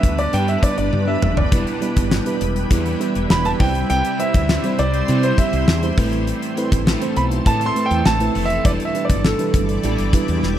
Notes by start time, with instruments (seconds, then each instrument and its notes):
Already playing: overdriven electric guitar G2 D3 G3, fm electric piano G3 B3 D4 E4 B4, ambient pad G3 D4 B4, grand piano E5
0.03 fretless electric bass D2, kick, closed hi-hat
0.18 grand piano D5, closed hi-hat
0.33 overdriven electric guitar G2 D3 G3, fretless electric bass G2, fm electric piano G3 B3 D4 B4, grand piano G5, closed hi-hat
0.48 grand piano E5, closed hi-hat
0.62 fm electric piano G3 B3 D4 B4, grand piano D5, kick, closed hi-hat
0.78 fretless electric bass G1, grand piano D5, closed hi-hat
0.93 fretless electric bass G2, high tom
1.07 fm electric piano G3 B3 D4 B4, grand piano E5
1.22 fretless electric bass F1, mid tom
1.37 grand piano D5, floor tom
1.51 fretless electric bass E1, overdriven electric guitar E2 B2 E3, fm electric piano G3 B3 E4 B4, ambient pad E4, kick, closed hi-hat
1.67 closed hi-hat
1.81 fm electric piano G3 B3 E4 B4, closed hi-hat
1.96 fretless electric bass G1, kick, closed hi-hat
2.11 snare
2.26 fm electric piano G3 B3 E4 B4, closed hi-hat
2.41 fretless electric bass E1, closed hi-hat
2.56 closed hi-hat
2.70 overdriven electric guitar E2 B2 E3, fretless electric bass E2, fm electric piano G3 B3 E4 B4, kick, closed hi-hat
2.86 closed hi-hat
3.00 fm electric piano G3 B3 E4 B4, closed hi-hat
3.15 fretless electric bass E1, closed hi-hat
3.30 fretless electric bass E1, grand piano B5, snare
3.45 fm electric piano G3 B3 E4 B4, grand piano A5, closed hi-hat
3.59 fretless electric bass C2, fm electric piano G3 C4 E4 C5, overdriven electric guitar G3 C4, ambient pad C5, grand piano G5, kick, open hi-hat
3.75 closed hi-hat
3.89 fretless electric bass C2, overdriven electric guitar C3 G3 C4, grand piano G5, closed hi-hat
4.05 closed hi-hat
4.19 fm electric piano G3 C4 E4 C5, grand piano E5, closed hi-hat
4.34 fretless electric bass D2, kick, closed hi-hat
4.49 overdriven electric guitar C3 G3 C4, snare
4.64 fm electric piano G3 C4 E4 C5, closed hi-hat
4.79 fretless electric bass C2, grand piano D5, closed hi-hat
4.94 closed hi-hat
5.08 overdriven electric guitar C3 G3 C4, fretless electric bass C3, fm electric piano G3 C4 E4 C5, closed hi-hat
5.23 grand piano C5, closed hi-hat
5.38 fm electric piano G3 C4 G4, grand piano E5, kick, closed hi-hat
5.53 fretless electric bass C2, closed hi-hat
5.68 fretless electric bass E2, snare
5.82 fm electric piano G3 C4 E4 C5, closed hi-hat
5.97 fretless electric bass A1, overdriven electric guitar A2 E3 A3, fm electric piano A3 C4 E4 B4, ambient pad A3 C4 A4, kick, open hi-hat
6.13 closed hi-hat
6.27 closed hi-hat
6.42 closed hi-hat
6.57 fm electric piano A3 C4 E4 B4, closed hi-hat
6.72 fretless electric bass A1, kick, closed hi-hat
6.86 overdriven electric guitar A2 E3 A3, snare
7.01 fm electric piano A3 C4 E4 C5, closed hi-hat
7.17 fretless electric bass B1, grand piano B5, closed hi-hat
7.31 closed hi-hat
7.45 overdriven electric guitar A2 E3 A3, fretless electric bass A2, fm electric piano A3 C4 E4 B4, grand piano A5, kick, closed hi-hat
7.61 closed hi-hat
7.66 grand piano C6
7.75 fm electric piano A3 C4 E4 B4, closed hi-hat
7.86 grand piano G5
7.91 fretless electric bass E2, closed hi-hat
8.05 fretless electric bass A1, grand piano A5, snare
8.20 fm electric piano A3 C4 E4 B4, closed hi-hat
8.35 fretless electric bass F1, overdriven electric guitar E3 A3, open hi-hat
8.46 grand piano E5
8.50 closed hi-hat
8.64 fretless electric bass E1, overdriven electric guitar E2 B2 E3, fm electric piano G3 D4 E4 B4, ambient pad G3 E4 D5, grand piano D5, kick, closed hi-hat
8.80 closed hi-hat
8.85 grand piano E5
8.94 fm electric piano G3 D4 E4 B4, closed hi-hat
9.05 grand piano D5
9.09 fretless electric bass G1, kick, closed hi-hat
9.24 grand piano A4, snare
9.39 fm electric piano G3 D4 E4 B4, closed hi-hat
9.54 fretless electric bass G1, kick, closed hi-hat
9.69 closed hi-hat
9.83 fretless electric bass A1, overdriven electric guitar E2 B2 E3, fm electric piano G3 D4 E4 A4, closed hi-hat
9.98 fretless electric bass G1, closed hi-hat
10.13 fm electric piano G3 D4 E4 B4, kick, closed hi-hat
10.28 fretless electric bass E2, closed hi-hat
10.43 fretless electric bass E1, snare